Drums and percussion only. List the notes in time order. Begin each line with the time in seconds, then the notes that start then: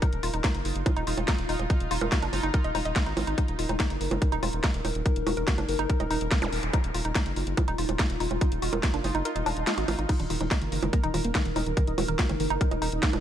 0.02 kick, closed hi-hat, high bongo
0.13 closed hi-hat
0.23 open hi-hat
0.34 closed hi-hat
0.44 kick, snare, closed hi-hat, high bongo
0.55 closed hi-hat
0.65 open hi-hat
0.76 closed hi-hat
0.86 kick, closed hi-hat, high bongo
0.97 closed hi-hat
1.07 open hi-hat
1.18 closed hi-hat, high bongo
1.28 kick, snare, closed hi-hat
1.39 closed hi-hat
1.49 open hi-hat
1.59 closed hi-hat, high bongo
1.70 kick, closed hi-hat
1.80 closed hi-hat
1.91 open hi-hat
2.01 closed hi-hat, high bongo
2.12 kick, snare, closed hi-hat
2.22 closed hi-hat
2.33 open hi-hat, high bongo
2.43 closed hi-hat
2.54 kick, closed hi-hat
2.64 closed hi-hat
2.75 open hi-hat, high bongo
2.85 closed hi-hat
2.96 kick, snare, closed hi-hat
3.06 closed hi-hat
3.17 open hi-hat, high bongo
3.27 closed hi-hat
3.38 kick, closed hi-hat
3.48 closed hi-hat
3.59 open hi-hat
3.69 closed hi-hat, high bongo
3.80 kick, snare, closed hi-hat
3.90 closed hi-hat
4.01 open hi-hat
4.11 closed hi-hat, high bongo
4.22 kick, closed hi-hat
4.32 closed hi-hat
4.43 open hi-hat, high bongo
4.53 closed hi-hat
4.64 kick, snare, closed hi-hat
4.74 closed hi-hat
4.85 open hi-hat, high bongo
4.95 closed hi-hat
5.06 kick, closed hi-hat
5.16 closed hi-hat
5.27 open hi-hat, high bongo
5.37 closed hi-hat
5.48 kick, snare, closed hi-hat
5.58 closed hi-hat, high bongo
5.69 open hi-hat
5.79 closed hi-hat
5.90 kick, closed hi-hat
6.00 closed hi-hat, high bongo
6.11 open hi-hat
6.21 closed hi-hat
6.32 kick, snare, closed hi-hat
6.42 closed hi-hat, high bongo
6.53 open hi-hat
6.63 closed hi-hat
6.73 kick, closed hi-hat, high bongo
6.84 closed hi-hat
6.94 open hi-hat
7.05 closed hi-hat
7.15 kick, snare, closed hi-hat, high bongo
7.26 closed hi-hat
7.36 open hi-hat
7.47 closed hi-hat
7.57 kick, closed hi-hat, high bongo
7.68 closed hi-hat
7.78 open hi-hat
7.89 closed hi-hat, high bongo
7.99 kick, snare, closed hi-hat
8.10 closed hi-hat
8.20 open hi-hat
8.31 closed hi-hat, high bongo
8.41 kick, closed hi-hat
8.52 closed hi-hat
8.62 open hi-hat
8.73 closed hi-hat, high bongo
8.83 kick, snare, closed hi-hat
8.94 closed hi-hat
9.04 open hi-hat, high bongo
9.15 closed hi-hat
9.25 closed hi-hat
9.36 closed hi-hat
9.46 open hi-hat, high bongo
9.57 closed hi-hat
9.67 snare, closed hi-hat
9.78 closed hi-hat
9.88 open hi-hat, high bongo
9.99 closed hi-hat
10.09 kick, closed hi-hat, crash
10.20 closed hi-hat
10.30 open hi-hat
10.41 closed hi-hat, high bongo
10.51 kick, snare, closed hi-hat
10.62 closed hi-hat
10.72 open hi-hat
10.83 closed hi-hat, high bongo
10.93 kick, closed hi-hat
11.04 closed hi-hat
11.14 open hi-hat, high bongo
11.25 closed hi-hat
11.35 kick, snare, closed hi-hat
11.45 closed hi-hat
11.56 open hi-hat, high bongo
11.66 closed hi-hat
11.77 kick, closed hi-hat
11.87 closed hi-hat
11.98 open hi-hat, high bongo
12.08 closed hi-hat
12.19 kick, snare, closed hi-hat
12.29 closed hi-hat, high bongo
12.40 open hi-hat
12.50 closed hi-hat
12.61 kick, closed hi-hat
12.71 closed hi-hat, high bongo
12.82 open hi-hat
12.92 closed hi-hat
13.03 kick, snare, closed hi-hat
13.13 closed hi-hat, high bongo